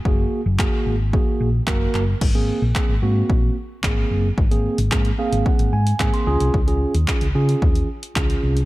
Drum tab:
CC |----------------|x---------------|----------------|----------------|
HH |----------------|----------------|-x-x-x-x-x-x-x-x|-x-x-x-x-x-x-x-x|
CP |----x-------x-x-|----x-------x---|----x-------x---|----x-------x---|
BD |o---o---o---o---|o---o---o---o---|o---o---o---o---|o---o---o---o---|